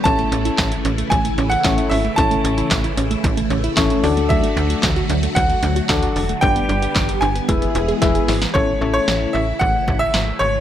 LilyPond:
<<
  \new Staff \with { instrumentName = "Grand piano" } { \time 4/4 \key a \major \tempo 4 = 113 a''4. r8 gis''8. fis''8. e''8 | a''4 r2. | e''2 fis''2 | g''4. gis''2 r8 |
cis''8. cis''8. e''8 fis''8. e''8. cis''8 | }
  \new Staff \with { instrumentName = "Synth keys" } { \time 4/4 \key a \major <cis' e' a' cis''>4~ <cis' e' a' cis''>16 r4. r16 <cis' e' a' cis''>8 r8 | <cis' e' a' cis''>4~ <cis' e' a' cis''>16 r4. r16 <cis' e' a' cis''>8 <d' fis' a' d''>8~ | <d' fis' a' d''>4 r2 <d' fis' a' d''>8 r8 | <d' g' b' d''>4~ <d' g' b' d''>16 r8. <e' gis' b' e''>4 <e' gis' b' e''>8 r8 |
<cis' e' a' cis''>8 <cis' e' a' cis''>4~ <cis' e' a' cis''>16 r2 r16 | }
  \new Staff \with { instrumentName = "Synth arpeggio sound" } { \time 4/4 \key a \major e16 a16 cis'16 e'16 e''16 e'16 cis'16 a16 e16 a16 cis'16 e'16 e''16 e'16 cis'16 a16 | e16 a16 cis'16 e'16 e''16 e'16 cis'16 a16 e16 a16 cis'16 e'16 e''16 e'16 d'16 a16 | fis16 a16 d'16 fis'16 fis''16 fis'16 d'16 a16 fis16 a16 d'16 fis'16 fis''16 fis'16 d'16 a16 | g16 b16 d'16 g'16 g''16 g'16 d'16 b16 gis16 b16 e'16 gis'16 gis''16 gis'16 e'16 b16 |
r1 | }
  \new Staff \with { instrumentName = "String machine" } { \clef bass \time 4/4 \key a \major << { <cis e e'>1~ | <cis e e'>2.~ <cis e e'>8 <d fis fis'>8~ | <d fis fis'>1 | <d g g'>2 <e gis gis'>2 |
<cis e e'>1 | } \\ { a1~ | a1~ | a1 | b1 |
a1 | } >> }
  \new Staff \with { instrumentName = "FM bass" } { \clef bass \time 4/4 \key a \major a,,8 a,,8 a,,8 a,,8 a,,8 a,,8 a,,8 gis,,8 | a,,8 a,,8 a,,8 a,,8 a,,8 a,,8 a,,8 d,8~ | d,8 d,8 d,8 d,8 d,8 d,8 d,8 e,,8 | g,,8 g,,8 g,,8 g,,8 e,,8 e,,8 e,,8 gis,,8 |
a,,8 a,,8 a,,8 a,,8 a,,8 a,,8 gis,,8 gis,,8 | }
  \new DrumStaff \with { instrumentName = "Drums" } \drummode { \time 4/4 <hh bd>16 hh16 hh16 hh16 <hc hh bd sn>16 hh16 hh16 hh16 <hh bd>16 hh16 hh16 hh16 <hc hh bd sn>16 hh16 hho16 hh16 | <hh bd>16 hh16 hh16 hh16 <hc hh bd sn>16 hh16 hh16 hh16 <hh bd>16 hh16 hh16 hh16 <hc hh bd sn>16 hh16 hho16 hh16 | <hh bd>16 hh16 hh16 hh16 <hc hh bd sn>16 hh16 hh16 hh16 <hh bd>16 hh16 hh16 hh16 <hc hh bd sn>16 hh16 hho16 hh16 | <hh bd>16 hh16 hh16 hh16 <hc hh bd sn>16 hh16 hh16 hh16 <hh bd>16 hh16 hh16 hh16 <hh bd sn>16 hh16 <hho sn>16 <hh sn>16 |
bd4 sn4 bd8 bd8 sn4 | }
>>